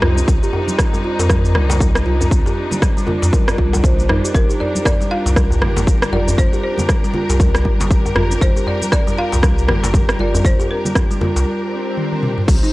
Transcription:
Already playing: string section C3 G3 D4 D#4
0.02 sub bass C2, kalimba F4, cross-stick, high conga, djembe bass
0.17 kalimba C4, shaker
0.28 sub bass C2, kalimba C4, kick, djembe tone, shaker
0.43 kalimba G4, shaker
0.53 djembe tone
0.68 high conga, shaker
0.78 kick, cross-stick, shaker
0.93 kalimba G3, djembe tone, shaker
1.04 kalimba F4
1.19 sub bass F2, djembe slap, djembe tone, shaker
1.29 kalimba A#4, kick, cross-stick, high conga, shaker
1.45 shaker
1.55 sub bass C2, kalimba G3, cross-stick, djembe tone, low conga
1.70 djembe slap, low conga, shaker
1.80 kalimba G3, kick, djembe tone, shaker
1.95 cross-stick, shaker
2.06 sub bass C2, kalimba F4, high conga
2.20 kalimba C4, djembe tone, djembe bass, shaker
2.31 sub bass C2, kick, shaker
2.46 kalimba G4, djembe tone, shaker
2.71 high conga, low conga, shaker
2.82 kick, cross-stick, djembe tone, shaker
2.97 kalimba G3, shaker
3.07 kalimba F4, djembe tone, low conga
3.22 sub bass F2, djembe slap, shaker
3.33 kalimba A#4, kick, high conga, shaker
3.48 cross-stick, djembe tone, shaker
3.58 sub bass C2, kalimba F4, kick, high conga
3.73 djembe slap, djembe tone, high conga, low conga, shaker
3.84 kalimba C5, kick, shaker
3.98 sub bass A#1, low conga, shaker
4.09 sub bass G1, kalimba D#4, cross-stick, djembe tone, high conga, djembe bass
4.24 kalimba G4, shaker
4.34 sub bass G1, kalimba C4, string section G4 A#4, marimba A#4, kick, shaker
4.50 kalimba G4, shaker
4.60 marimba D5, djembe tone
4.75 high conga, shaker
4.85 marimba D5, kick, cross-stick, djembe tone, shaker
5.01 kalimba G3, shaker
5.11 kalimba F4, marimba F5
5.26 sub bass C2, djembe slap, djembe tone, shaker
5.36 kalimba A#4, kick, cross-stick, high conga, shaker
5.51 djembe tone, shaker
5.62 sub bass G1, kalimba G3, cross-stick, low conga
5.77 djembe slap, low conga, shaker
5.87 kalimba G3, kick, djembe tone, shaker
6.02 cross-stick, shaker
6.12 sub bass G1, kalimba F4, marimba D5, djembe tone, high conga
6.28 kalimba C4, djembe bass, shaker
6.38 sub bass G1, kalimba C4, marimba C5, kick, shaker
6.53 kalimba G4, djembe tone, shaker
6.63 marimba C5
6.78 high conga, djembe tone, low conga, shaker
6.89 kick, cross-stick, shaker
7.04 kalimba G3, shaker
7.14 kalimba F4, djembe tone, low conga
7.29 sub bass C2, djembe slap, shaker
7.40 kalimba A#4, kick, djembe tone, high conga, shaker
7.55 cross-stick, shaker
7.65 sub bass G1, kalimba G3, kick, high conga
7.80 djembe slap, high conga, djembe tone, low conga, shaker
7.91 kalimba G3, kick, shaker
8.06 djembe tone, shaker
8.15 sub bass G1, kalimba F4, cross-stick, high conga, djembe bass
8.31 kalimba C4, shaker
8.41 sub bass G1, kalimba C4, marimba C5, kick, djembe tone, shaker
8.56 kalimba G4, shaker
8.67 marimba D5, djembe tone
8.82 high conga, shaker
8.92 marimba D5, kick, cross-stick, shaker
9.07 kalimba G3, djembe tone, shaker
9.18 kalimba F4, marimba F5
9.32 sub bass C2, djembe slap, djembe tone, shaker
9.43 kalimba A#4, kick, cross-stick, high conga, shaker
9.59 shaker
9.68 sub bass G1, kalimba G3, cross-stick, djembe tone, low conga
9.83 djembe slap, low conga, shaker
9.94 kalimba G3, kick, djembe tone, shaker
10.09 cross-stick, shaker
10.19 sub bass G1, kalimba F4, marimba D5, high conga
10.34 kalimba C4, djembe tone, djembe bass, shaker
10.45 sub bass G1, kalimba C4, marimba C5, kick, shaker
10.59 kalimba G4, djembe tone, shaker
10.71 marimba A#4
10.85 high conga, low conga, shaker
10.95 kick, cross-stick, djembe tone, shaker
11.11 kalimba G3, shaker
11.21 kalimba F4, djembe tone, low conga
11.36 sub bass C2, djembe slap, shaker
11.46 swell
11.97 high tom
12.12 high tom
12.23 mid tom
12.38 mid tom
12.48 sub bass C2, string section C3 G3 D#4 C5, kalimba C4, kick, crash, high conga, shaker
12.63 kalimba D#4, shaker

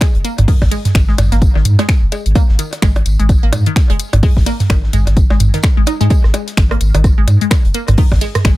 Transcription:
0.01 synth arpeggio sound G#3, finger snap, kick, snare, closed hi-hat, tambourine, percussion blips
0.15 sub bass F#1, closed hi-hat
0.25 synth arpeggio sound A#3, closed hi-hat, tambourine
0.38 sub bass G#1, closed hi-hat, mid tom, percussion blips
0.48 synth arpeggio sound D#3, kick, closed hi-hat, open hi-hat
0.61 sub bass G#1, kick, snare, percussion blips
0.71 synth arpeggio sound G#3, closed hi-hat, tambourine
0.85 snare, closed hi-hat, mid tom
0.95 sub bass G#1, finger snap, kick, snare, closed hi-hat, tambourine, percussion blips
1.09 synth arpeggio sound G#3, snare
1.18 sub bass G#1, snare, closed hi-hat, mid tom, tambourine, percussion blips
1.32 sub bass G#1, synth arpeggio sound A#3, snare, closed hi-hat
1.42 kick, closed hi-hat, tambourine
1.55 sub bass G#1, synth arpeggio sound D#3, snare, percussion blips
1.65 sub bass G#2, closed hi-hat, mid tom, tambourine
1.79 synth arpeggio sound G#3, snare, closed hi-hat, percussion blips
1.89 finger snap, kick, snare, closed hi-hat, tambourine
2.02 sub bass F#1
2.12 synth arpeggio sound G#3, closed hi-hat, tambourine, percussion blips
2.26 sub bass G#1, closed hi-hat
2.35 synth arpeggio sound A#3, kick, closed hi-hat, tambourine, percussion blips
2.49 sub bass G#1, snare
2.59 synth arpeggio sound D#3, closed hi-hat, tambourine
2.73 snare, closed hi-hat, percussion blips
2.82 sub bass G#1, synth arpeggio sound G#3, finger snap, kick, snare, closed hi-hat, tambourine
2.96 closed hi-hat, percussion blips
3.06 sub bass G#1, closed hi-hat, tambourine
3.19 sub bass G#1, synth arpeggio sound G#3, closed hi-hat
3.29 kick, closed hi-hat, tambourine, percussion blips
3.43 sub bass G#1, synth arpeggio sound A#3
3.52 sub bass G#2, closed hi-hat, mid tom, tambourine, percussion blips
3.66 synth arpeggio sound D#3, closed hi-hat
3.76 finger snap, kick, snare, closed hi-hat, tambourine
3.90 sub bass F#1, synth arpeggio sound G#3, closed hi-hat, percussion blips
4.00 closed hi-hat, tambourine
4.13 sub bass G#1, closed hi-hat, mid tom, percussion blips
4.23 synth arpeggio sound G#3, kick, closed hi-hat, open hi-hat
4.37 sub bass G#1, kick, snare
4.46 synth arpeggio sound A#3, closed hi-hat, tambourine, percussion blips
4.60 snare, closed hi-hat, mid tom
4.70 sub bass G#1, synth arpeggio sound D#3, finger snap, kick, snare, closed hi-hat, tambourine, percussion blips
4.84 snare
4.93 sub bass G#1, synth arpeggio sound G#3, snare, closed hi-hat, mid tom, tambourine
5.07 sub bass G#1, snare, closed hi-hat, percussion blips
5.17 kick, closed hi-hat, tambourine
5.30 sub bass G#1, synth arpeggio sound G#3, snare, percussion blips
5.40 sub bass G#1, closed hi-hat, mid tom, tambourine
5.54 synth arpeggio sound D#3, snare, closed hi-hat
5.63 finger snap, kick, snare, closed hi-hat, tambourine, percussion blips
5.77 sub bass G#1, synth arpeggio sound G#3
5.86 synth arpeggio sound D#4, closed hi-hat, tambourine, percussion blips
6.01 sub bass G#2, synth arpeggio sound G#3, closed hi-hat
6.10 synth arpeggio sound G#3, kick, closed hi-hat, tambourine, percussion blips
6.24 sub bass G#1, cross-stick, snare
6.34 synth arpeggio sound G#3, closed hi-hat, tambourine, percussion blips
6.47 snare, closed hi-hat
6.57 sub bass G#1, finger snap, kick, snare, closed hi-hat, tambourine
6.71 synth arpeggio sound A#3, cross-stick, closed hi-hat, percussion blips
6.81 sub bass G#1, closed hi-hat, tambourine
6.94 sub bass G#1, synth arpeggio sound D#3, closed hi-hat, percussion blips
7.04 kick, cross-stick, closed hi-hat, tambourine
7.18 sub bass G#1, synth arpeggio sound G#3
7.28 sub bass G#2, closed hi-hat, mid tom, tambourine, percussion blips
7.41 synth arpeggio sound G#3, closed hi-hat
7.51 finger snap, kick, cross-stick, snare, closed hi-hat, tambourine, percussion blips
7.65 sub bass F#1, closed hi-hat
7.74 synth arpeggio sound A#3, closed hi-hat, tambourine
7.88 sub bass G#1, cross-stick, closed hi-hat, mid tom, percussion blips
7.98 synth arpeggio sound D#3, kick, closed hi-hat, open hi-hat
8.12 sub bass G#1, kick, snare, percussion blips
8.21 synth arpeggio sound G#3, closed hi-hat, tambourine
8.35 cross-stick, snare, closed hi-hat, mid tom
8.45 sub bass G#1, synth arpeggio sound G#3, finger snap, kick, snare, closed hi-hat, tambourine, percussion blips

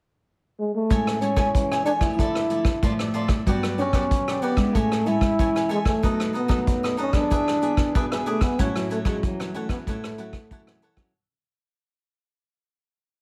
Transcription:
0.59 trombone G#3
0.75 trombone A3
0.90 nylon-string guitar A2 G#3 C#4 E4, cavaquinho A4 C#5 E5 G#5, kick, closed hi-hat
1.07 cross-stick
1.21 nylon-string guitar G#3 C#4 E4, trombone C#4, cavaquinho A4 C#5 E5 G#5, closed hi-hat
1.36 nylon-string guitar G#3 C#4 E4, cavaquinho A4 C#5 E5 G#5, kick, cross-stick, closed hi-hat
1.54 nylon-string guitar E3, kick, closed hi-hat
1.72 cavaquinho C#5 E5 G#5, cross-stick
1.85 trombone D4, cavaquinho A4 C#5 E5 G#5, closed hi-hat
2.01 nylon-string guitar F3 A3 E4, trombone E4, cavaquinho C#5 E5 G#5, kick, cross-stick, closed hi-hat
2.18 nylon-string guitar D3, cavaquinho A4 D5 E5, kick, closed hi-hat
2.35 cross-stick, closed hi-hat
2.50 nylon-string guitar F3 A3 E4, cavaquinho A4 D5 E5, closed hi-hat
2.65 kick, cross-stick
2.82 nylon-string guitar A2 F3 A3 E4, cavaquinho F4 A4 D5 E5, kick, closed hi-hat
2.99 cavaquinho A4 D5 E5, cross-stick, closed hi-hat
3.14 cavaquinho F4 A4 D5 E5, closed hi-hat
3.28 cavaquinho A4 E5, kick, cross-stick, closed hi-hat
3.46 nylon-string guitar G2 F#3 B3 D4, cavaquinho F#4 G4 B4 D5, kick, closed hi-hat
3.63 cross-stick, closed hi-hat
3.78 nylon-string guitar F#3 B3 D4, trombone C#4, cavaquinho F#4 G4 B4 D5, closed hi-hat
3.93 nylon-string guitar F#3 B3, cavaquinho F#4 G4 B4 D5, kick, cross-stick
4.11 nylon-string guitar D3, kick, closed hi-hat
4.28 cavaquinho G4 B4 D5, cross-stick
4.42 trombone B3, cavaquinho F#4 G4 B4 D5, closed hi-hat
4.57 nylon-string guitar G#3 C#4 E4, cavaquinho G4 B4 D5, kick, cross-stick
4.75 nylon-string guitar A2, trombone A3, cavaquinho A4 C#5 E5 G#5, kick, closed hi-hat
4.92 cross-stick, closed hi-hat
5.06 nylon-string guitar G#3 C#4 E4, trombone E4, cavaquinho A4 C#5 E5 G#5, closed hi-hat
5.21 nylon-string guitar G#3 C#4 E4, kick, cross-stick, closed hi-hat
5.39 nylon-string guitar E3 G#3 C#4 E4, cavaquinho A4 C#5 E5 G#5, kick, closed hi-hat
5.56 cavaquinho C#5 E5 G#5, cross-stick
5.69 trombone G#3, cavaquinho A4 C#5 E5 G#5, closed hi-hat
5.85 trombone A3, cavaquinho C#5 E5 G#5, kick, cross-stick
6.03 nylon-string guitar B2 F#3 A3 D#4, cavaquinho D#4 A4 B4 D#5, kick, closed hi-hat
6.20 cross-stick
6.33 trombone B3, cavaquinho D#4 A4 B4 D#5, closed hi-hat
6.48 nylon-string guitar F#3 A3 D#4, cavaquinho D#4 A4 B4 D#5, kick, cross-stick, closed hi-hat
6.67 nylon-string guitar F#2, kick, closed hi-hat
6.83 cavaquinho A4 B4 D#5, cross-stick
6.97 trombone C#4, cavaquinho D#4 A4 B4 D#5, closed hi-hat
7.13 nylon-string guitar B3 D4 G#4, trombone D4, cavaquinho A4 B4 D#5, kick, cross-stick, closed hi-hat
7.30 nylon-string guitar E3, cavaquinho D4 G#4 B4 E5, kick, closed hi-hat
7.48 cross-stick, closed hi-hat
7.62 nylon-string guitar B3 D4 G#4, cavaquinho D4 G#4 B4 E5, closed hi-hat
7.77 nylon-string guitar B3 D4 G#4, kick, cross-stick
7.95 nylon-string guitar B2 B3 D4 G#4, cavaquinho D4 G#4 B4 E5, kick, closed hi-hat
8.12 cavaquinho G#4 B4 E5, cross-stick, closed hi-hat
8.26 trombone A3, cavaquinho D4 G#4 B4 E5, closed hi-hat
8.41 trombone B3, cavaquinho G#4 B4 E5, kick, cross-stick, closed hi-hat
8.59 nylon-string guitar A2 F#3 C#4 E4, trombone C#4, cavaquinho E4 A4 C#5 F#5, kick, closed hi-hat
8.76 nylon-string guitar F#3 C#4 E4, cross-stick, closed hi-hat
8.90 trombone A3, cavaquinho E4 A4 C#5 F#5, closed hi-hat
9.05 nylon-string guitar F#3 C#4 E4, trombone G#3, cavaquinho E4 A4 C#5 F#5, kick, cross-stick
9.23 nylon-string guitar E3, trombone F#3, kick, closed hi-hat
9.40 cavaquinho A4 C#5 F#5, cross-stick
9.54 nylon-string guitar F#3 C#4 E4, trombone A3, cavaquinho E4 A4 C#5 F#5, closed hi-hat
9.69 trombone B3, cavaquinho A4 C#5 F#5, kick, cross-stick
9.87 nylon-string guitar A2, trombone A3, cavaquinho E4 A4 C#5 F#5, kick, closed hi-hat
10.04 cross-stick, closed hi-hat
10.18 nylon-string guitar F#3 C#4 E4, cavaquinho E4 A4 C#5 F#5, closed hi-hat
10.33 kick, cross-stick, closed hi-hat
10.50 nylon-string guitar E3 F#3 C#4 E4, cavaquinho E4 A4 C#5 F#5, kick, closed hi-hat
10.67 cavaquinho A4 C#5 F#5, cross-stick
10.82 cavaquinho E4 A4 C#5 F#5, closed hi-hat
10.97 nylon-string guitar F#3 C#4 E4, cavaquinho A4 C#5 F#5, kick, cross-stick

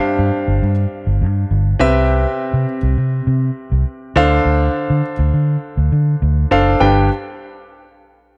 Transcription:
Already playing: grand piano G2 D4 G4 C5 F5
0.19 fingered electric bass G2
0.48 fingered electric bass G1
0.63 fingered electric bass G2
1.07 fingered electric bass G1
1.22 fingered electric bass G2
1.51 fingered electric bass G1
1.79 fingered electric bass C2, grand piano C3 C4 G4 B4 E5
2.53 fingered electric bass C3
2.83 fingered electric bass C2
2.98 fingered electric bass C3
3.27 fingered electric bass C3
3.72 fingered electric bass C2
4.16 fingered electric bass D2, grand piano D3 D4 A4 C5 F5
4.45 fingered electric bass D2
4.90 fingered electric bass D3
5.19 fingered electric bass D2
5.34 fingered electric bass D3
5.77 fingered electric bass D2
5.92 fingered electric bass D3
6.22 fingered electric bass D2
6.51 fingered electric bass F#1, grand piano D4 A4 C5 F5
6.80 fingered electric bass G1, grand piano G2 D4 G4 B4 G5

